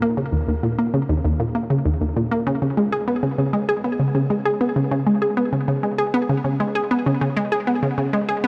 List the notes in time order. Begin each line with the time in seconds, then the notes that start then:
0.02 A#3
0.17 C#3
0.32 D#2
0.48 D#2
0.63 A#2
0.79 A#3
0.94 C#3
1.09 D#2
1.24 D#2
1.40 A#2
1.55 A#3
1.70 C#3
1.85 D#2
2.01 D#2
2.16 A#2
2.31 A#3
2.47 C#3
2.62 C#3
2.77 G#3
2.92 G#4
3.08 B3
3.23 C#3
3.38 C#3
3.53 G#3
3.69 G#4
3.84 B3
3.99 C#3
4.15 C#3
4.30 G#3
4.45 G#4
4.61 B3
4.76 C#3
4.91 C#3
5.07 G#3
5.22 G#4
5.37 B3
5.53 C#3
5.68 C#3
5.83 G#3
5.98 G#4
6.14 B3
6.29 C#3
6.44 C#3
6.60 G#3
6.75 G#4
6.91 B3
7.06 C#3
7.21 C#3
7.37 G#3
7.52 G#4
7.67 B3
7.83 C#3
7.98 C#3
8.13 G#3
8.29 G#4
8.44 B3